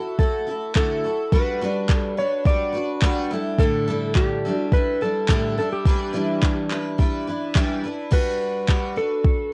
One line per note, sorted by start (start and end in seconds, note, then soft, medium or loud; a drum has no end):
0.00 0.18 E4 soft
0.00 0.19 F#4 soft
0.00 0.20 F#4 medium
0.00 0.19 A4 soft
0.19 0.47 A3 soft
0.19 0.47 E4 medium
0.19 0.46 F#4 medium
0.19 0.75 A4 medium
0.19 0.45 A4 medium
0.19 kick medium
0.47 0.74 E4 soft
0.47 0.75 F#4 soft
0.47 0.75 A4 soft
0.75 1.03 D3 medium
0.75 1.04 A3 medium
0.75 1.04 E4 medium
0.75 1.04 F#4 medium
0.75 1.34 A4 medium
0.75 1.03 A4 medium
0.75 kick medium
0.75 clap loud
1.04 1.33 E4 soft
1.04 1.32 F#4 soft
1.04 1.32 A4 medium
1.32 1.61 G3 medium
1.32 1.61 D4 medium
1.32 1.60 F#4 medium
1.32 1.96 B4 medium
1.32 1.60 B4 medium
1.32 kick medium
1.61 2.21 G3 medium
1.61 2.19 D4 medium
1.61 2.17 F#4 medium
1.61 2.16 B4 medium
1.89 kick loud
1.89 clap medium
1.96 2.18 A4 medium
2.17 2.45 D4 soft
2.17 2.45 F#4 soft
2.17 2.46 B4 medium
2.17 2.46 C#5 loud
2.45 2.74 G3 medium
2.45 2.74 D4 medium
2.45 2.73 F#4 medium
2.45 2.71 B4 medium
2.45 3.27 D5 medium
2.45 kick loud
2.73 3.01 D4 soft
2.73 3.02 F#4 soft
2.73 3.01 B4 soft
3.02 3.30 G3 medium
3.02 3.30 D4 medium
3.02 3.30 F#4 medium
3.02 3.30 B4 medium
3.02 kick medium
3.02 clap loud
3.31 3.59 G3 soft
3.31 3.59 D4 soft
3.31 3.59 E4 medium
3.31 3.59 A4 medium
3.59 3.87 A2 medium
3.59 3.87 D3 medium
3.59 3.88 G3 medium
3.59 3.87 D4 medium
3.59 3.87 E4 medium
3.59 4.16 A4 medium
3.59 3.87 A4 medium
3.59 kick medium
3.88 4.45 A2 soft
3.88 4.49 D3 medium
3.88 4.47 G3 medium
3.88 4.46 D4 medium
3.88 4.45 E4 medium
3.88 4.44 A4 medium
4.15 4.54 G4 medium
4.15 kick medium
4.15 clap medium
4.45 4.71 G3 soft
4.45 4.72 D4 soft
4.45 4.73 E4 soft
4.45 4.73 A4 medium
4.54 4.69 F#4 medium
4.72 5.00 G3 medium
4.72 5.01 D4 medium
4.72 5.01 E4 medium
4.72 5.00 A4 medium
4.72 5.02 B4 loud
4.72 kick medium
5.01 5.28 G3 soft
5.01 5.29 D4 soft
5.01 5.29 E4 soft
5.01 5.29 A4 soft
5.01 5.57 A4 medium
5.29 5.57 A2 medium
5.29 5.57 D3 medium
5.29 5.57 G3 medium
5.29 5.57 D4 medium
5.29 5.57 E4 medium
5.29 5.56 A4 medium
5.29 kick medium
5.29 clap loud
5.57 5.85 G3 soft
5.57 5.86 D4 soft
5.57 5.85 E4 soft
5.57 5.85 A4 soft
5.57 5.72 A4 medium
5.72 7.52 G4 medium
5.85 6.13 E3 medium
5.85 6.13 G3 medium
5.85 6.12 D4 medium
5.85 6.12 E4 medium
5.85 6.12 B4 medium
5.85 kick loud
6.13 6.70 E3 medium
6.13 6.98 G3 medium
6.13 6.72 D4 medium
6.13 6.70 E4 medium
6.13 6.71 B4 medium
6.42 kick medium
6.42 clap medium
6.71 6.98 D4 soft
6.71 6.99 E4 medium
6.71 6.99 B4 soft
6.71 clap medium
6.98 7.26 G3 medium
6.98 7.27 D4 medium
6.98 7.27 E4 medium
6.98 7.26 B4 medium
6.98 kick medium
7.27 7.55 D4 soft
7.27 7.55 E4 soft
7.27 7.55 B4 medium
7.55 7.83 E3 medium
7.55 7.84 G3 medium
7.55 7.84 D4 medium
7.55 7.83 E4 medium
7.55 7.82 B4 medium
7.55 kick medium
7.55 clap loud
7.84 8.10 D4 soft
7.84 8.11 E4 medium
7.84 8.11 B4 soft
8.11 8.67 G3 medium
8.11 8.67 D4 medium
8.11 8.68 F#4 medium
8.11 8.68 B4 medium
8.11 8.97 B4 medium
8.11 kick medium
8.11 crash medium
8.68 8.96 G3 medium
8.68 8.97 D4 medium
8.68 8.95 F#4 medium
8.68 8.95 B4 medium
8.68 kick medium
8.68 clap medium
8.96 9.53 D4 soft
8.96 9.52 F#4 soft
8.96 9.53 A4 medium
8.96 9.51 B4 soft
9.25 kick medium